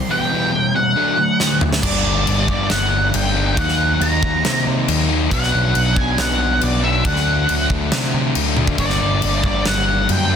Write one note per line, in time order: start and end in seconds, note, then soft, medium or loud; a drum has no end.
0.00 0.12 C6 medium
0.08 0.29 E2 medium
0.08 0.30 B2 medium
0.08 0.30 E3 loud
0.08 0.30 E3 medium
0.08 0.30 G3 loud
0.08 0.31 B3 loud
0.08 0.75 G5 loud
0.30 0.51 E2 medium
0.30 0.52 B2 medium
0.30 0.52 E3 medium
0.30 0.52 G3 medium
0.30 0.52 B3 medium
0.52 0.72 E2 medium
0.52 0.72 B2 medium
0.52 0.73 E3 medium
0.52 0.73 G3 medium
0.74 0.94 E2 medium
0.74 0.95 B2 medium
0.74 0.94 E3 medium
0.74 0.95 G3 medium
0.74 1.58 F#5 medium
0.96 1.16 D3 medium
0.96 1.17 D3 medium
0.96 1.17 F#3 medium
0.96 1.17 A3 medium
0.96 1.17 D4 loud
1.18 1.38 D3 medium
1.18 1.38 F#3 medium
1.18 1.38 A3 medium
1.40 1.60 D3 medium
1.40 1.60 F#3 medium
1.40 1.60 A3 medium
1.40 snare medium
1.61 1.81 D3 medium
1.61 1.82 F#3 medium
1.61 1.81 A3 medium
1.61 mid tom medium
1.73 snare medium
1.83 2.03 G1 loud
1.83 3.34 G2 medium
1.83 2.47 G2 medium
1.83 3.34 D3 medium
1.83 2.48 D3 medium
1.83 3.35 G3 medium
1.83 2.46 G3 medium
1.83 3.34 A#3 medium
1.83 3.34 D4 loud
1.83 2.48 D5 medium
1.83 kick loud
1.83 crash loud
1.83 crash medium
2.05 2.25 G1 medium
2.27 2.47 G1 medium
2.27 crash medium
2.47 2.68 G1 medium
2.47 3.57 G2 medium
2.47 3.55 D3 medium
2.47 3.55 G3 medium
2.47 2.72 D5 medium
2.47 kick medium
2.70 3.10 G1 loud
2.70 3.15 F#5 medium
2.70 snare loud
2.70 crash medium
3.14 3.54 G1 medium
3.14 3.58 G5 loud
3.14 crash medium
3.35 3.57 G2 medium
3.35 3.56 D3 medium
3.35 3.56 G3 medium
3.35 3.56 A#3 medium
3.35 3.56 D4 medium
3.56 4.20 D#3 medium
3.56 5.08 D#3 medium
3.56 5.10 F#3 medium
3.56 4.21 A#3 medium
3.56 5.08 A#3 loud
3.56 4.20 D#4 loud
3.56 5.07 D#4 loud
3.56 4.03 F#5 loud
3.56 kick loud
3.56 crash medium
3.69 snare soft
4.01 4.20 D#2 medium
4.01 4.63 A#5 loud
4.01 crash medium
4.21 4.42 D#2 medium
4.21 5.30 D#3 medium
4.21 5.30 A#3 medium
4.21 5.29 D#4 medium
4.21 kick medium
4.45 4.64 C3 medium
4.45 snare medium
4.45 crash medium
4.67 4.86 C3 medium
4.88 5.27 D#2 medium
4.88 crash medium
5.09 5.30 D#3 medium
5.09 5.31 F#3 medium
5.09 5.30 A#3 medium
5.09 5.29 D#4 loud
5.30 5.51 B1 loud
5.30 5.95 B2 medium
5.30 6.82 B2 medium
5.30 6.82 F#3 medium
5.30 5.96 F#3 loud
5.30 6.82 B3 loud
5.30 5.94 B3 loud
5.30 6.82 D4 loud
5.30 5.97 F#5 loud
5.30 kick loud
5.30 crash medium
5.43 snare soft
5.54 5.73 B1 medium
5.75 5.95 B1 medium
5.75 crash medium
5.96 6.16 B1 medium
5.96 7.03 B2 medium
5.96 7.04 F#3 medium
5.96 7.03 B3 medium
5.96 6.19 G#5 loud
5.96 kick medium
6.18 6.58 B1 loud
6.18 6.64 F#5 loud
6.18 snare loud
6.18 crash medium
6.61 7.01 B1 loud
6.61 6.83 D5 medium
6.61 crash medium
6.83 7.04 B2 medium
6.83 7.04 F#3 medium
6.83 7.04 B3 medium
6.83 7.06 D4 medium
6.83 7.06 E5 medium
7.04 7.44 D2 loud
7.04 7.68 D3 medium
7.04 8.55 D3 loud
7.04 8.56 F#3 loud
7.04 7.69 A3 medium
7.04 8.56 A3 loud
7.04 7.68 D4 loud
7.04 8.56 D4 loud
7.04 7.66 F#5 medium
7.04 kick loud
7.04 crash medium
7.16 snare soft
7.49 7.69 D2 medium
7.49 crash medium
7.69 7.90 D2 medium
7.69 8.78 D3 medium
7.69 8.78 A3 medium
7.69 8.77 D4 medium
7.69 kick medium
7.92 8.12 C3 medium
7.92 snare loud
7.92 crash medium
8.14 8.33 C3 medium
8.35 8.75 D2 loud
8.35 crash medium
8.57 8.77 D3 medium
8.57 8.78 F#3 medium
8.57 8.78 A3 medium
8.57 8.77 D4 medium
8.57 high tom medium
8.67 kick medium
8.78 8.98 G1 loud
8.78 9.42 G2 medium
8.78 10.29 G2 medium
8.78 10.29 D3 medium
8.78 9.43 D3 medium
8.78 10.30 G3 loud
8.78 9.42 G3 medium
8.78 10.29 A#3 loud
8.78 10.28 D4 loud
8.78 9.44 D5 medium
8.78 kick medium
8.78 crash medium
8.90 snare soft
9.01 9.20 G1 medium
9.22 9.42 G1 medium
9.22 crash medium
9.43 9.63 G1 medium
9.43 10.36 G2 medium
9.43 10.36 D3 medium
9.43 10.36 G3 medium
9.43 9.67 D5 medium
9.43 kick medium
9.65 10.05 G1 medium
9.65 10.07 F#5 medium
9.65 snare loud
9.65 crash medium
10.09 10.36 F#2 medium
10.09 10.36 G5 medium
10.09 crash medium
10.29 10.36 G2 medium
10.29 10.36 D3 medium
10.29 10.36 G3 medium
10.29 10.36 A#3 medium
10.29 10.36 D4 medium